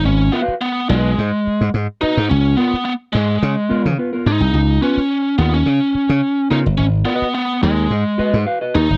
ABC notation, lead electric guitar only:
X:1
M:4/4
L:1/16
Q:1/4=107
K:G#dor
V:1 name="Lead electric guitar"
C2 B,2 B,2 G,6 z2 D2 | C2 B,2 B,2 G,6 z2 D2- | D2 C4 B, C6- C D2 | C2 B,2 B,2 G,6 z2 D2 |]